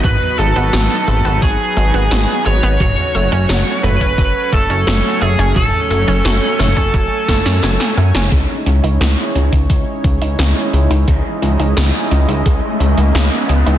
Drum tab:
HH |x-xxx-xxx-xxx-xx|x-xxx-xxx-xxx-xx|x-xxx-xxx-xxx-xx|x-xxx-xxx-xxx-xx|
SD |----o-------o---|----o-------o---|----o-o---oooo-o|----o-------o---|
T2 |o-----o---------|o-----o---------|o-----o---------|o-o---o---------|
BD |o-------o-------|o------oo-o-----|o------oo-o-----|o------oo-o-----|

HH |x-xxx-xxx-xxx-xx|
SD |----o-------o---|
T2 |o-o-------------|
BD |o-------o-------|